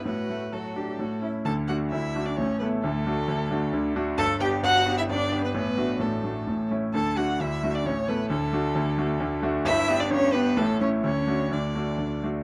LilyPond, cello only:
\new Staff \with { instrumentName = "Cello" } { \time 3/4 \key d \major \tempo 4 = 131 fis'4 fis'8 g'8 fis'8 e'8 | a'8 fis'8 e'8. d'16 cis'8 b8 | a2~ a8 r8 | a'8 g'8 fis'8. e'16 d'8. b16 |
b4 a4. r8 | a'8 fis'8 e'8. d'16 cis'8 b8 | a2~ a8 r8 | e'8. d'16 cis'8 b8 a8 cis'8 |
cis'4 d'4. r8 | }